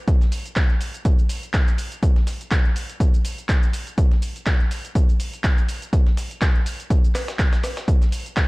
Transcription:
0.08 kick, closed hi-hat, shaker
0.21 snare, closed hi-hat, shaker
0.32 closed hi-hat, open hi-hat, shaker
0.46 closed hi-hat, shaker
0.56 kick, snare, clap, closed hi-hat, shaker
0.70 closed hi-hat
0.81 closed hi-hat, open hi-hat, shaker
0.94 closed hi-hat, shaker
1.05 kick, closed hi-hat, shaker
1.19 closed hi-hat, shaker
1.29 closed hi-hat, open hi-hat, shaker
1.43 closed hi-hat, shaker
1.54 kick, snare, clap, closed hi-hat, shaker
1.67 clap, closed hi-hat, shaker
1.78 closed hi-hat, open hi-hat, shaker
1.92 closed hi-hat, shaker
2.03 kick, closed hi-hat, shaker
2.16 snare, closed hi-hat
2.27 snare, closed hi-hat, open hi-hat, shaker
2.41 closed hi-hat, shaker
2.51 kick, snare, clap, closed hi-hat, shaker
2.65 closed hi-hat
2.76 closed hi-hat, open hi-hat, shaker
2.90 closed hi-hat, shaker
3.00 kick, closed hi-hat, shaker
3.14 closed hi-hat, shaker
3.25 closed hi-hat, open hi-hat, shaker
3.38 closed hi-hat, shaker
3.49 kick, snare, clap, closed hi-hat, shaker
3.63 closed hi-hat, shaker
3.73 closed hi-hat, open hi-hat, shaker
3.87 closed hi-hat, shaker
3.98 kick, closed hi-hat, shaker
4.11 snare, closed hi-hat
4.22 closed hi-hat, open hi-hat, shaker
4.36 closed hi-hat, shaker
4.46 kick, snare, clap, closed hi-hat, shaker
4.60 closed hi-hat
4.71 closed hi-hat, open hi-hat, shaker
4.85 closed hi-hat, shaker
4.95 kick, closed hi-hat, shaker
5.09 closed hi-hat, shaker
5.20 closed hi-hat, open hi-hat, shaker
5.34 closed hi-hat, shaker
5.44 kick, snare, clap, closed hi-hat, shaker
5.58 clap, closed hi-hat, shaker
5.68 closed hi-hat, open hi-hat, shaker
5.82 closed hi-hat, shaker
5.93 kick, closed hi-hat, shaker
6.07 snare, closed hi-hat
6.17 snare, closed hi-hat, open hi-hat, shaker
6.31 closed hi-hat, shaker
6.41 kick, snare, clap, closed hi-hat, shaker
6.55 closed hi-hat
6.66 closed hi-hat, open hi-hat, shaker
6.80 closed hi-hat, shaker
6.90 kick, closed hi-hat, shaker
7.04 closed hi-hat, shaker
7.15 cross-stick, snare, clap, closed hi-hat, open hi-hat, shaker
7.28 snare, closed hi-hat, shaker
7.39 kick, snare, clap, closed hi-hat, shaker
7.53 snare, closed hi-hat, shaker
7.63 cross-stick, snare, closed hi-hat, open hi-hat, shaker
7.77 snare, closed hi-hat, shaker
7.88 kick, closed hi-hat, shaker
8.02 snare, closed hi-hat, shaker
8.12 closed hi-hat, open hi-hat, shaker
8.26 closed hi-hat, shaker
8.37 kick, snare, clap, closed hi-hat, shaker

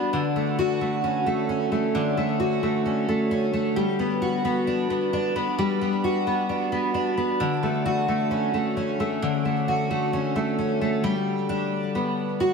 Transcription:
Already playing: G3 B3 D4 F#4
0.13 D3
0.36 A3
0.59 F#4
0.81 A3
1.04 C#4
1.26 A3
1.49 C#4
1.72 A3
1.95 D3
2.17 A3
2.40 F#4
2.63 A3
2.86 C#4
3.08 A3
3.31 C#4
3.53 A3
3.76 G3
3.99 B3
4.22 F#4
4.45 B3
4.67 D4
4.90 B3
5.13 D4
5.36 B3
5.58 G3
5.81 B3
6.04 F#4
6.27 B3
6.49 D4
6.72 B3
6.94 D4
7.17 B3
7.40 D3
7.63 A3
7.86 F#4
8.08 A3
8.31 C#4
8.54 A3
8.77 C#4
9.00 A3
9.22 D3
9.45 A3
9.68 F#4
9.91 A3
10.13 C#4
10.36 A3
10.59 C#4
10.81 A3
11.04 G3
11.49 D4
11.95 B3
12.40 F#4

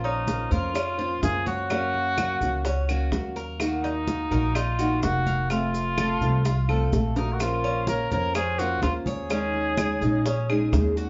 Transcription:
Already playing: A#1 F3 A#3 C#4 F4 C5
0.04 C#4 D#4, high conga
0.27 A#3 C#4 F4 C5, high bongo, high conga, maracas
0.51 F2 A#3 C#4 F4 A#4 C5, high conga, maracas
0.74 C#4, muted nylon-string guitar stroke, high bongo, high conga, claves, maracas
0.98 A#3 C#4 F4 C5, high conga
1.22 F#2 A#3 C#4 F4 G#4 C5, high bongo, low bongo, high conga, maracas
1.46 F#4 C#5, high conga, maracas
1.70 C#3 F#3 A#3 C#4 F#4, high bongo, high conga, claves, maracas
1.94 high bongo, high conga
2.18 F#3 A#3 C#4 F#4, high bongo, high conga, claves, maracas
2.41 C#2 F#3 A#3 C#4 F#4, high bongo, high conga, maracas
2.65 C#4, muted nylon-string guitar stroke, high bongo, high conga, maracas
2.89 F#3 A#3 C#4 F#4, high conga, claves, maracas
3.12 D#2 F#3 A#3 C#4 F#4, high bongo, low bongo, high conga, maracas
3.36 A#4, high bongo, high conga, maracas
3.60 D#3 A#3 D#4 F#4, high bongo, high conga, claves, maracas
3.84 D#4, high conga
4.07 D#3 A#3 D#4 F#4, high bongo, high conga, maracas
4.31 A#1 A#3 D#4 F#4 A#4, high conga, maracas
4.55 D#4 F4, muted nylon-string guitar stroke, high bongo, high conga, claves, maracas
4.79 A#3 D#4 F#4, high conga, maracas
5.02 F1 D#3 A#3 D#4 F#4, high bongo, low bongo, high conga, maracas
5.27 F5, high conga, maracas
5.50 C3 F3 A3 C4 F4, high bongo, high conga, claves, maracas
5.74 high bongo, high conga, maracas
5.98 F3 A3 C4 F4 A4, high bongo, high conga, claves, maracas
6.21 C2 F3 A3 C4 F4, high bongo, high conga, maracas
6.45 F4, muted nylon-string guitar stroke, high bongo, high conga, maracas
6.68 F3 A3 C4 F4 A4, high conga, claves
6.92 A#1 F3 A3 C4 F4, high bongo, high conga, maracas
7.16 D#4 F#4 A#4, low bongo, high conga, maracas
7.33 F#4 A#4
7.40 F3 A#3 C#4 F4 A#4 C5, high bongo, high conga, claves, maracas
7.64 C#4, high conga
7.87 A#3 C#4 F4 A#4 C5 C#5, high bongo, high conga, maracas
8.11 F2 A#3 C#4 F4 A#4 C5 C#5, high conga, maracas
8.35 C#4 G#4 C5, muted nylon-string guitar stroke, high bongo, high conga, claves, maracas
8.58 A#3 C#4 F4 F#4 A#4 C5, high conga, maracas
8.82 D#2 A#3 C#4 F4 A#4 C5, high bongo, low bongo, high conga, maracas
9.06 G#4 C#5, high conga, maracas
9.30 D#3 G#3 C#4 D#4 G#4, high bongo, high conga, claves, maracas
9.54 high bongo, high conga
9.77 G#3 C#4 D#4 G#4, high bongo, high conga, claves, maracas
10.01 A#1 G#3 C#4 D#4 G#4, high bongo, high conga, maracas
10.26 C#4, muted nylon-string guitar stroke, high bongo, high conga, maracas
10.49 G#3 C#4 D#4 G#4, high conga, claves
10.72 D#2 G#3 C#4 D#4 G#4, high bongo, low bongo, high conga, maracas
10.96 F#4, high bongo, high conga, maracas

